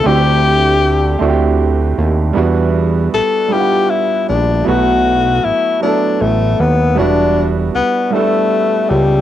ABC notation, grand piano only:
X:1
M:6/8
L:1/8
Q:3/8=52
K:Em
V:1 name="Grand piano"
[A,CDEFG]2 z [A,CDEFG]2 z | [G,B,DEF]2 z [G,B,DE=F^f]2 z | [F,A,B,EF]2 z [F,A,B,EA]2 z | [G,B,DEF]2 z [G,B,DEA]2 z |]